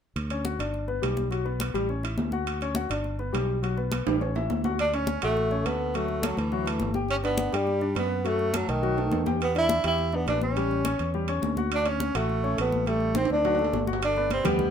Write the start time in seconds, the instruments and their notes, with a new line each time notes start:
0.16 fingered electric bass D2, high conga, high timbale
0.30 grand piano C#4 C#5, high conga, high timbale
0.45 grand piano F#4 F#5, high conga, low timbale
0.59 fingered electric bass G1, grand piano D4 D5, high conga, high timbale
0.74 high conga
0.88 grand piano B3 B4, high conga
1.02 fingered electric bass B1, grand piano G3 G4, high conga, high timbale, low timbale
1.17 high conga
1.31 grand piano F#3 F#4, high conga, high timbale
1.45 grand piano B3 B4, high conga
1.60 high conga, high timbale, low timbale
1.74 fingered electric bass A1, grand piano G3 G4, high conga, high timbale
1.89 grand piano C#4 C#5, high conga
2.03 grand piano E4 E5, high conga, high timbale
2.18 fingered electric bass D2, high conga, low timbale
2.32 grand piano F#4 F#5, high conga
2.47 high conga, high timbale
2.61 grand piano C#4 C#5, high conga, high timbale
2.75 grand piano F#4 F#5, high conga, low timbale
2.89 fingered electric bass G1, grand piano D4 D5, high conga, high timbale
3.04 high conga
3.19 grand piano B3 B4, high conga
3.32 fingered electric bass B1, grand piano G3 G4, high conga, high timbale, low timbale
3.62 grand piano F#3 F#4, high conga, high timbale
3.77 grand piano B3 B4, high conga
3.92 high conga, high timbale, low timbale
4.06 fingered electric bass A1, grand piano G3 G4, high conga, high timbale
4.21 grand piano C#4 C#5, high conga, high timbale
4.35 grand piano E4 E5, high conga, low timbale
4.50 fingered electric bass D2, high conga, low timbale
4.64 grand piano F#4 F#5, high conga, low timbale
4.79 trombone D4, tenor saxophone D4, high conga, high timbale
4.93 trombone C#4, grand piano C#4 C#5, tenor saxophone C#4, high conga, high timbale
5.07 high conga, low timbale
5.22 fingered electric bass A1, trombone A3, tenor saxophone A3, grand piano F#4 F#5, high conga, high timbale
5.37 high conga
5.51 grand piano C#4 C#5, high conga
5.65 fingered electric bass D2, grand piano A3 A4, trombone B3, tenor saxophone B3, high conga, high timbale, low timbale
5.94 grand piano F#3 F#4, trombone A3, tenor saxophone A3, high conga, high timbale
6.08 high conga
6.22 trombone F#3, tenor saxophone F#3, grand piano A3 A4, high conga, high timbale, low timbale
6.37 fingered electric bass D2, trombone E3, tenor saxophone E3, high conga, high timbale
6.52 grand piano F#3 F#4, high conga
6.66 grand piano A3 A4, high conga, high timbale
6.80 fingered electric bass G1, high conga, low timbale
6.94 grand piano G4 G5, high conga
7.08 trombone C#4, tenor saxophone C#4, high conga, high timbale
7.23 trombone B3, tenor saxophone B3, grand piano D4 D5, high conga, high timbale
7.38 high conga, low timbale
7.52 fingered electric bass G2, trombone G3, tenor saxophone G3, grand piano G4 G5, high conga, high timbale
7.67 high conga
7.81 grand piano D4 D5, high conga
7.95 fingered electric bass F#2, grand piano B3 B4, trombone B3, tenor saxophone B3, high conga, high timbale, low timbale
8.24 grand piano F#3 F#4, trombone A3, tenor saxophone A3, high conga, high timbale
8.39 high conga
8.53 trombone F#3, tenor saxophone F#3, grand piano A3 A4, high conga, high timbale, low timbale
8.68 fingered electric bass B1, trombone D#3, tenor saxophone D#3, high conga, high timbale
8.82 grand piano F#3 F#4, high conga
8.97 grand piano A3 A4, high conga, high timbale
9.12 fingered electric bass E2, high conga, high timbale
9.26 grand piano G4 G5, high conga, low timbale
9.41 trombone B3, tenor saxophone B3, high conga, high timbale
9.55 grand piano D4 D5, trombone E4, tenor saxophone E4, high conga, high timbale
9.69 high conga, low timbale
9.84 fingered electric bass E2, trombone E4, tenor saxophone E4, grand piano G4 G5, high conga, high timbale
9.98 high conga
10.12 trombone B3, tenor saxophone B3, grand piano D4 D5, high conga
10.27 fingered electric bass A1, grand piano B3 B4, tenor saxophone D4, trombone D4, high conga, high timbale, low timbale
10.42 tenor saxophone C#4, trombone C#4, high conga
10.56 grand piano G3 G4, high conga, high timbale
10.71 high conga
10.85 grand piano C#4 C#5, high conga, high timbale, low timbale
10.99 fingered electric bass E2, high conga, high timbale
11.14 grand piano G3 G4, high conga
11.28 grand piano C#4 C#5, high conga, high timbale
11.42 fingered electric bass D2, high conga, low timbale
11.57 grand piano F#4 F#5, high conga
11.72 trombone D4, tenor saxophone D4, high conga, high timbale
11.85 grand piano C#4 C#5, trombone C#4, tenor saxophone C#4, high conga, high timbale
12.00 high conga, low timbale
12.15 fingered electric bass A1, trombone A3, tenor saxophone A3, grand piano F#4 F#5, high conga, high timbale
12.29 high conga
12.43 grand piano C#4 C#5, high conga
12.57 fingered electric bass A1, grand piano A3 A4, trombone B3, tenor saxophone B3, high conga, high timbale, low timbale
12.72 high conga
12.86 grand piano G3 G4, trombone A3, tenor saxophone A3, high conga, high timbale
13.00 high conga
13.15 grand piano C4 C5, trombone C4, tenor saxophone C4, high conga, high timbale
13.25 high timbale
13.30 fingered electric bass D2, trombone D4, tenor saxophone D4, high conga
13.35 high timbale
13.45 grand piano F#3 F#4, high conga, high timbale
13.55 grand piano A3, low timbale
13.59 grand piano A4, high conga
13.65 low timbale
13.73 fingered electric bass G1, high conga, low timbale
13.87 grand piano F#4 F#5, high conga
13.93 low timbale
14.02 trombone D3, tenor saxophone D4, high conga, high timbale
14.16 grand piano B3 B4 D5, high conga
14.30 trombone C3, tenor saxophone C4, high conga, high timbale
14.44 fingered electric bass D2, trombone B2, grand piano G3 G4 G5, tenor saxophone B3, high conga, low conga, high timbale
14.59 high conga, low conga